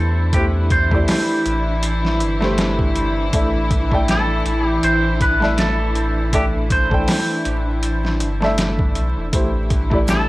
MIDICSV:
0, 0, Header, 1, 7, 480
1, 0, Start_track
1, 0, Tempo, 750000
1, 211, Time_signature, 4, 2, 24, 8
1, 6583, End_track
2, 0, Start_track
2, 0, Title_t, "Clean electric guitar"
2, 0, Program_c, 0, 27
2, 0, Note_on_c, 0, 69, 96
2, 220, Note_on_c, 0, 67, 92
2, 232, Note_off_c, 0, 69, 0
2, 283, Note_off_c, 0, 67, 0
2, 461, Note_on_c, 0, 72, 91
2, 1390, Note_off_c, 0, 72, 0
2, 2627, Note_on_c, 0, 69, 96
2, 2986, Note_off_c, 0, 69, 0
2, 2986, Note_on_c, 0, 67, 96
2, 3096, Note_off_c, 0, 67, 0
2, 3099, Note_on_c, 0, 72, 111
2, 3338, Note_off_c, 0, 72, 0
2, 3341, Note_on_c, 0, 71, 99
2, 3578, Note_off_c, 0, 71, 0
2, 3580, Note_on_c, 0, 69, 96
2, 4061, Note_on_c, 0, 67, 101
2, 4070, Note_off_c, 0, 69, 0
2, 4124, Note_off_c, 0, 67, 0
2, 4302, Note_on_c, 0, 72, 95
2, 5231, Note_off_c, 0, 72, 0
2, 6464, Note_on_c, 0, 69, 99
2, 6583, Note_off_c, 0, 69, 0
2, 6583, End_track
3, 0, Start_track
3, 0, Title_t, "Upright piano"
3, 0, Program_c, 1, 0
3, 0, Note_on_c, 1, 57, 93
3, 0, Note_on_c, 1, 64, 93
3, 0, Note_on_c, 1, 67, 86
3, 0, Note_on_c, 1, 72, 106
3, 181, Note_off_c, 1, 57, 0
3, 185, Note_off_c, 1, 64, 0
3, 189, Note_off_c, 1, 67, 0
3, 194, Note_off_c, 1, 72, 0
3, 211, Note_on_c, 1, 57, 75
3, 216, Note_on_c, 1, 64, 70
3, 220, Note_on_c, 1, 67, 67
3, 222, Note_on_c, 1, 72, 79
3, 553, Note_off_c, 1, 57, 0
3, 555, Note_off_c, 1, 64, 0
3, 557, Note_off_c, 1, 67, 0
3, 559, Note_off_c, 1, 72, 0
3, 581, Note_on_c, 1, 57, 84
3, 590, Note_on_c, 1, 64, 80
3, 599, Note_on_c, 1, 67, 83
3, 605, Note_on_c, 1, 74, 97
3, 1511, Note_off_c, 1, 57, 0
3, 1515, Note_off_c, 1, 64, 0
3, 1520, Note_off_c, 1, 67, 0
3, 1523, Note_off_c, 1, 74, 0
3, 1539, Note_on_c, 1, 57, 105
3, 1548, Note_on_c, 1, 64, 93
3, 1556, Note_on_c, 1, 67, 92
3, 1563, Note_on_c, 1, 72, 108
3, 2103, Note_off_c, 1, 57, 0
3, 2107, Note_off_c, 1, 64, 0
3, 2111, Note_off_c, 1, 67, 0
3, 2115, Note_off_c, 1, 72, 0
3, 2131, Note_on_c, 1, 57, 78
3, 2134, Note_on_c, 1, 69, 70
3, 2140, Note_on_c, 1, 74, 70
3, 2143, Note_on_c, 1, 76, 78
3, 2473, Note_off_c, 1, 57, 0
3, 2475, Note_off_c, 1, 69, 0
3, 2477, Note_off_c, 1, 74, 0
3, 2479, Note_off_c, 1, 76, 0
3, 2499, Note_on_c, 1, 57, 83
3, 2507, Note_on_c, 1, 69, 79
3, 2516, Note_on_c, 1, 74, 86
3, 2525, Note_on_c, 1, 79, 101
3, 3430, Note_off_c, 1, 57, 0
3, 3434, Note_off_c, 1, 69, 0
3, 3438, Note_off_c, 1, 74, 0
3, 3443, Note_off_c, 1, 79, 0
3, 3456, Note_on_c, 1, 57, 95
3, 3464, Note_on_c, 1, 69, 88
3, 3473, Note_on_c, 1, 74, 90
3, 3480, Note_on_c, 1, 76, 105
3, 4021, Note_off_c, 1, 57, 0
3, 4025, Note_off_c, 1, 69, 0
3, 4029, Note_off_c, 1, 74, 0
3, 4033, Note_off_c, 1, 76, 0
3, 4048, Note_on_c, 1, 57, 74
3, 4053, Note_on_c, 1, 69, 70
3, 4057, Note_on_c, 1, 74, 72
3, 4061, Note_on_c, 1, 76, 80
3, 4392, Note_off_c, 1, 57, 0
3, 4394, Note_off_c, 1, 69, 0
3, 4396, Note_off_c, 1, 74, 0
3, 4398, Note_off_c, 1, 76, 0
3, 4414, Note_on_c, 1, 57, 83
3, 4423, Note_on_c, 1, 69, 82
3, 4432, Note_on_c, 1, 74, 80
3, 4440, Note_on_c, 1, 79, 98
3, 5348, Note_off_c, 1, 57, 0
3, 5352, Note_off_c, 1, 69, 0
3, 5356, Note_off_c, 1, 74, 0
3, 5361, Note_off_c, 1, 79, 0
3, 5379, Note_on_c, 1, 57, 92
3, 5388, Note_on_c, 1, 69, 93
3, 5395, Note_on_c, 1, 74, 93
3, 5405, Note_on_c, 1, 76, 112
3, 5942, Note_off_c, 1, 57, 0
3, 5947, Note_off_c, 1, 69, 0
3, 5951, Note_off_c, 1, 74, 0
3, 5956, Note_off_c, 1, 76, 0
3, 5968, Note_on_c, 1, 57, 73
3, 5974, Note_on_c, 1, 64, 68
3, 5977, Note_on_c, 1, 67, 68
3, 5982, Note_on_c, 1, 72, 81
3, 6311, Note_off_c, 1, 57, 0
3, 6315, Note_off_c, 1, 64, 0
3, 6316, Note_off_c, 1, 67, 0
3, 6318, Note_off_c, 1, 72, 0
3, 6337, Note_on_c, 1, 57, 91
3, 6347, Note_on_c, 1, 64, 82
3, 6354, Note_on_c, 1, 67, 78
3, 6361, Note_on_c, 1, 74, 92
3, 6583, Note_off_c, 1, 57, 0
3, 6583, Note_off_c, 1, 64, 0
3, 6583, Note_off_c, 1, 67, 0
3, 6583, Note_off_c, 1, 74, 0
3, 6583, End_track
4, 0, Start_track
4, 0, Title_t, "Synth texture"
4, 0, Program_c, 2, 99
4, 0, Note_on_c, 2, 62, 100
4, 6583, Note_off_c, 2, 62, 0
4, 6583, End_track
5, 0, Start_track
5, 0, Title_t, "String section"
5, 0, Program_c, 3, 48
5, 0, Note_on_c, 3, 52, 82
5, 0, Note_on_c, 3, 64, 85
5, 5962, Note_off_c, 3, 52, 0
5, 5962, Note_off_c, 3, 64, 0
5, 5970, Note_on_c, 3, 52, 80
5, 5970, Note_on_c, 3, 64, 81
5, 6583, Note_off_c, 3, 52, 0
5, 6583, Note_off_c, 3, 64, 0
5, 6583, End_track
6, 0, Start_track
6, 0, Title_t, "Sub bass"
6, 0, Program_c, 4, 38
6, 0, Note_on_c, 4, 40, 113
6, 670, Note_off_c, 4, 40, 0
6, 932, Note_on_c, 4, 33, 94
6, 1410, Note_on_c, 4, 31, 108
6, 1420, Note_off_c, 4, 33, 0
6, 2110, Note_off_c, 4, 31, 0
6, 2131, Note_on_c, 4, 33, 99
6, 2831, Note_off_c, 4, 33, 0
6, 2851, Note_on_c, 4, 33, 93
6, 3066, Note_off_c, 4, 33, 0
6, 3091, Note_on_c, 4, 33, 110
6, 4511, Note_off_c, 4, 33, 0
6, 4771, Note_on_c, 4, 33, 90
6, 5250, Note_on_c, 4, 31, 99
6, 5260, Note_off_c, 4, 33, 0
6, 5732, Note_on_c, 4, 35, 86
6, 5741, Note_off_c, 4, 31, 0
6, 5849, Note_off_c, 4, 35, 0
6, 5866, Note_on_c, 4, 28, 86
6, 5959, Note_off_c, 4, 28, 0
6, 5971, Note_on_c, 4, 33, 98
6, 6583, Note_off_c, 4, 33, 0
6, 6583, End_track
7, 0, Start_track
7, 0, Title_t, "Drums"
7, 210, Note_on_c, 9, 36, 103
7, 210, Note_on_c, 9, 42, 86
7, 274, Note_off_c, 9, 36, 0
7, 274, Note_off_c, 9, 42, 0
7, 451, Note_on_c, 9, 36, 95
7, 451, Note_on_c, 9, 42, 65
7, 515, Note_off_c, 9, 36, 0
7, 515, Note_off_c, 9, 42, 0
7, 585, Note_on_c, 9, 36, 94
7, 649, Note_off_c, 9, 36, 0
7, 691, Note_on_c, 9, 46, 75
7, 696, Note_on_c, 9, 38, 107
7, 755, Note_off_c, 9, 46, 0
7, 760, Note_off_c, 9, 38, 0
7, 932, Note_on_c, 9, 42, 63
7, 996, Note_off_c, 9, 42, 0
7, 1169, Note_on_c, 9, 42, 88
7, 1233, Note_off_c, 9, 42, 0
7, 1311, Note_on_c, 9, 38, 40
7, 1375, Note_off_c, 9, 38, 0
7, 1411, Note_on_c, 9, 42, 70
7, 1475, Note_off_c, 9, 42, 0
7, 1551, Note_on_c, 9, 38, 48
7, 1615, Note_off_c, 9, 38, 0
7, 1650, Note_on_c, 9, 42, 84
7, 1656, Note_on_c, 9, 38, 114
7, 1714, Note_off_c, 9, 42, 0
7, 1720, Note_off_c, 9, 38, 0
7, 1785, Note_on_c, 9, 36, 101
7, 1849, Note_off_c, 9, 36, 0
7, 1892, Note_on_c, 9, 42, 67
7, 1956, Note_off_c, 9, 42, 0
7, 2131, Note_on_c, 9, 36, 108
7, 2131, Note_on_c, 9, 42, 87
7, 2195, Note_off_c, 9, 36, 0
7, 2195, Note_off_c, 9, 42, 0
7, 2371, Note_on_c, 9, 36, 100
7, 2372, Note_on_c, 9, 42, 70
7, 2435, Note_off_c, 9, 36, 0
7, 2436, Note_off_c, 9, 42, 0
7, 2506, Note_on_c, 9, 36, 96
7, 2570, Note_off_c, 9, 36, 0
7, 2613, Note_on_c, 9, 42, 84
7, 2619, Note_on_c, 9, 38, 116
7, 2677, Note_off_c, 9, 42, 0
7, 2683, Note_off_c, 9, 38, 0
7, 2852, Note_on_c, 9, 42, 66
7, 2916, Note_off_c, 9, 42, 0
7, 3092, Note_on_c, 9, 42, 90
7, 3156, Note_off_c, 9, 42, 0
7, 3331, Note_on_c, 9, 36, 100
7, 3332, Note_on_c, 9, 42, 70
7, 3395, Note_off_c, 9, 36, 0
7, 3396, Note_off_c, 9, 42, 0
7, 3471, Note_on_c, 9, 38, 36
7, 3535, Note_off_c, 9, 38, 0
7, 3570, Note_on_c, 9, 42, 85
7, 3576, Note_on_c, 9, 38, 117
7, 3634, Note_off_c, 9, 42, 0
7, 3640, Note_off_c, 9, 38, 0
7, 3811, Note_on_c, 9, 42, 65
7, 3875, Note_off_c, 9, 42, 0
7, 4050, Note_on_c, 9, 36, 109
7, 4051, Note_on_c, 9, 42, 89
7, 4114, Note_off_c, 9, 36, 0
7, 4115, Note_off_c, 9, 42, 0
7, 4290, Note_on_c, 9, 36, 95
7, 4290, Note_on_c, 9, 42, 72
7, 4354, Note_off_c, 9, 36, 0
7, 4354, Note_off_c, 9, 42, 0
7, 4424, Note_on_c, 9, 36, 91
7, 4488, Note_off_c, 9, 36, 0
7, 4529, Note_on_c, 9, 46, 77
7, 4535, Note_on_c, 9, 38, 108
7, 4593, Note_off_c, 9, 46, 0
7, 4599, Note_off_c, 9, 38, 0
7, 4770, Note_on_c, 9, 42, 70
7, 4834, Note_off_c, 9, 42, 0
7, 5010, Note_on_c, 9, 42, 88
7, 5074, Note_off_c, 9, 42, 0
7, 5151, Note_on_c, 9, 38, 38
7, 5215, Note_off_c, 9, 38, 0
7, 5250, Note_on_c, 9, 42, 75
7, 5314, Note_off_c, 9, 42, 0
7, 5390, Note_on_c, 9, 38, 47
7, 5454, Note_off_c, 9, 38, 0
7, 5490, Note_on_c, 9, 42, 89
7, 5496, Note_on_c, 9, 38, 117
7, 5554, Note_off_c, 9, 42, 0
7, 5560, Note_off_c, 9, 38, 0
7, 5625, Note_on_c, 9, 36, 102
7, 5689, Note_off_c, 9, 36, 0
7, 5730, Note_on_c, 9, 42, 64
7, 5794, Note_off_c, 9, 42, 0
7, 5971, Note_on_c, 9, 36, 111
7, 5971, Note_on_c, 9, 42, 85
7, 6035, Note_off_c, 9, 36, 0
7, 6035, Note_off_c, 9, 42, 0
7, 6210, Note_on_c, 9, 42, 65
7, 6211, Note_on_c, 9, 36, 97
7, 6274, Note_off_c, 9, 42, 0
7, 6275, Note_off_c, 9, 36, 0
7, 6345, Note_on_c, 9, 36, 96
7, 6409, Note_off_c, 9, 36, 0
7, 6450, Note_on_c, 9, 82, 78
7, 6451, Note_on_c, 9, 42, 85
7, 6457, Note_on_c, 9, 38, 112
7, 6514, Note_off_c, 9, 82, 0
7, 6515, Note_off_c, 9, 42, 0
7, 6521, Note_off_c, 9, 38, 0
7, 6583, End_track
0, 0, End_of_file